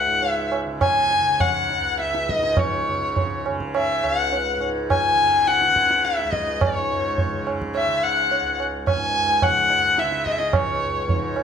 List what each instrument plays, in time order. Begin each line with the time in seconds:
Already playing: tanpura C#2 C#3, violin F#5
0.07 tanpura G#2
0.22 tabla tin
0.31 violin E5
0.52 tabla na
0.64 tanpura C#3
0.81 violin G#5, tabla na, tabla ge
1.11 tabla te
1.19 tanpura C#3
1.40 violin F#5, tabla na, tabla ge
1.70 tabla te
1.77 tanpura C#2
1.99 violin E5, tabla te
2.15 tabla te
2.29 tanpura G#2, violin D#5, tabla ke
2.43 tabla te
2.57 violin C#5, tabla na, tabla ge
2.89 tanpura C#3
3.16 tabla tin, tabla ge
3.46 tanpura C#3, tabla na
3.60 tabla ke
3.75 violin E5, tabla na
4.03 tanpura C#2, violin F#5, tabla na
4.32 tabla tin
4.58 tanpura G#2, tabla na
4.90 violin G#5, tabla na, tabla ge
5.12 tanpura C#3
5.47 violin F#5, tabla te
5.62 tabla te
5.68 tanpura C#3
5.76 tabla ke
5.91 tabla te
6.04 violin E5, tabla te
6.19 tabla te
6.24 tanpura C#2
6.32 violin D#5, tabla ke
6.47 tabla te
6.61 violin C#5, tabla na, tabla ge
6.78 tanpura G#2
7.18 tabla tin, tabla ge
7.32 tanpura C#3
7.47 tabla na
7.62 tabla ke
7.75 violin E5, tabla na
7.87 tanpura C#3
8.03 violin F#5
8.31 tabla tin
8.41 tanpura C#2
8.60 tabla na
8.87 violin G#5, tabla na, tabla ge
8.95 tanpura G#2
9.42 violin F#5, tabla na, tabla ge
9.48 tanpura C#3
9.70 tabla te
9.98 tanpura C#3, violin E5, tabla te
10.12 tabla te
10.26 violin D#5, tabla ke
10.32 violin E5
10.38 violin D#5, tabla te
10.47 violin D#5
10.53 tanpura C#2, violin C#5, tabla na, tabla ge
11.07 tanpura G#2, tabla tin, tabla ge
11.36 tabla na